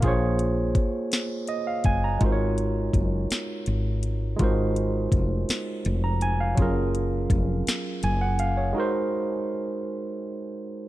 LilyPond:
<<
  \new Staff \with { instrumentName = "Tine electric piano" } { \time 6/8 \key aes \mixolydian \tempo 4. = 55 << { r2 ees''16 f''16 aes''16 bes''16~ | bes''16 r2 r8. | r2 r16 bes''16 aes''16 f''16~ | f''16 r4. r16 aes''16 ges''16 f''16 des''16~ |
des''16 r2 r8. | } \\ { <bes f' aes' c'' des''>2. | <aes ees' f' ges' bes' c'' des''>2. | <aes ees' f' ges' bes' c''>2. | <ges des' f' aes' bes'>2. |
<aes ees' ges' bes' c''>2. | } >> }
  \new Staff \with { instrumentName = "Fretless electric bass" } { \clef bass \time 6/8 \key aes \mixolydian bes,,4 r4. ges,,8 | aes,,4 ges,,8 r8 aes,,4 | aes,,4 f,,8 r8 f,,4 | ges,,4 f,,8 r8 ges,,4 |
r2. | }
  \new DrumStaff \with { instrumentName = "Drums" } \drummode { \time 6/8 <hh bd>8 hh8 <hh bd>8 <hh sn>8 hh8 <hh bd>8 | <hh bd>8 hh8 <hh bd>8 <hh sn>8 hh8 hh8 | <hh bd>8 hh8 <hh bd>8 <hh sn>8 hh8 hh8 | <hh bd>8 hh8 <hh bd>8 <hh sn>8 hh8 hh8 |
r4. r4. | }
>>